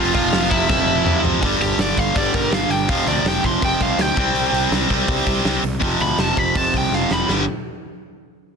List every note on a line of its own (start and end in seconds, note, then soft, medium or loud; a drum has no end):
0.00 0.10 F1 loud
0.00 0.66 F2 medium
0.00 0.68 C3 loud
0.00 0.69 F3 loud
0.00 0.12 F4 medium
0.00 0.13 F5 loud
0.14 0.29 F1 loud
0.14 0.48 F4 medium
0.14 0.50 F5 loud
0.14 kick medium
0.33 0.47 F1 loud
0.33 snare loud
0.33 open hi-hat medium
0.49 0.65 F1 medium
0.49 1.40 F2 medium
0.49 1.41 C3 medium
0.49 1.40 F3 medium
0.49 0.68 E4 medium
0.49 0.68 E5 loud
0.49 kick medium
0.68 0.83 F1 loud
0.68 1.40 F2 medium
0.68 1.41 C3 medium
0.68 1.42 F3 loud
0.68 1.20 E4 medium
0.68 1.20 E5 loud
0.68 kick loud
0.68 snare medium
0.86 1.01 F1 loud
1.05 1.20 F2 loud
1.05 mid tom medium
1.24 1.38 F2 loud
1.24 floor tom loud
1.41 1.55 G1 medium
1.41 2.14 G2 medium
1.41 2.14 D3 medium
1.41 2.15 G3 loud
1.41 kick loud
1.41 open hi-hat medium
1.60 1.73 G1 medium
1.60 1.79 G4 medium
1.60 open hi-hat medium
1.78 1.91 G1 medium
1.78 1.98 D5 medium
1.78 snare loud
1.78 open hi-hat medium
1.97 2.10 G1 medium
1.97 2.17 F5 medium
1.97 kick medium
1.97 open hi-hat medium
2.15 2.28 G1 medium
2.15 2.87 G2 medium
2.15 2.88 D3 medium
2.15 2.89 G3 medium
2.15 2.34 D5 loud
2.15 kick loud
2.15 open hi-hat medium
2.34 2.46 G1 medium
2.34 2.52 A#4 medium
2.34 kick medium
2.34 open hi-hat medium
2.51 2.64 G1 medium
2.51 2.70 F5 medium
2.51 snare loud
2.51 open hi-hat medium
2.68 2.89 G1 medium
2.68 2.89 G5 medium
2.68 open hi-hat medium
2.88 3.01 F1 medium
2.88 3.59 F2 medium
2.88 3.61 C3 medium
2.88 3.62 F3 loud
2.88 3.06 F5 loud
2.88 kick loud
2.88 open hi-hat medium
3.07 3.19 D2 medium
3.07 3.25 D5 medium
3.07 open hi-hat medium
3.24 3.37 F1 medium
3.24 3.44 G5 medium
3.24 snare loud
3.24 open hi-hat medium
3.44 3.56 F1 medium
3.44 3.62 C6 medium
3.44 kick medium
3.44 open hi-hat soft
3.61 3.75 F1 loud
3.61 4.15 F2 medium
3.61 4.14 C3 medium
3.61 4.16 F3 medium
3.61 3.82 G5 medium
3.61 kick loud
3.61 open hi-hat medium
3.80 3.93 C2 medium
3.80 4.01 F5 medium
3.80 kick medium
3.80 open hi-hat soft
3.97 4.10 D2 medium
3.97 4.71 G5 medium
3.97 snare loud
3.97 open hi-hat medium
4.15 4.29 C2 medium
4.15 4.88 C3 medium
4.15 4.89 G3 medium
4.15 4.88 C4 medium
4.15 kick loud
4.15 open hi-hat soft
4.34 4.47 C2 medium
4.34 open hi-hat medium
4.52 4.65 C2 medium
4.52 open hi-hat medium
4.71 4.84 C2 medium
4.71 snare loud
4.71 open hi-hat medium
4.88 5.02 C2 medium
4.88 5.63 C3 medium
4.88 5.62 G3 medium
4.88 5.61 C4 medium
4.88 kick medium
4.88 open hi-hat medium
5.08 5.21 C2 medium
5.08 kick loud
5.08 open hi-hat medium
5.26 5.39 C2 medium
5.26 kick medium
5.26 open hi-hat medium
5.45 5.57 C2 medium
5.45 snare loud
5.45 open hi-hat medium
5.63 5.76 C2 medium
5.63 open hi-hat medium
5.80 5.94 F1 medium
5.80 6.53 F2 medium
5.80 6.54 C3 medium
5.80 6.55 F3 medium
5.80 kick loud
5.80 open hi-hat medium
6.00 6.13 D2 medium
6.00 6.20 B5 medium
6.00 open hi-hat soft
6.18 6.31 F1 medium
6.18 6.38 A5 medium
6.18 snare loud
6.18 open hi-hat medium
6.37 6.50 F1 medium
6.37 6.57 B5 medium
6.37 kick medium
6.37 open hi-hat soft
6.54 6.68 F1 medium
6.54 7.27 F2 medium
6.54 7.28 C3 medium
6.54 7.28 F3 medium
6.54 6.74 A5 medium
6.54 kick medium
6.54 open hi-hat medium
6.74 6.86 C2 medium
6.74 6.94 G5 medium
6.74 kick medium
6.74 open hi-hat medium
6.92 7.04 F1 medium
6.92 7.11 F5 medium
6.92 snare medium
7.11 7.23 F1 medium
7.11 7.29 B5 medium
7.11 snare medium
7.28 7.46 G1 medium
7.28 7.43 G2 medium
7.28 7.43 D3 medium
7.28 7.43 G3 medium
7.28 snare medium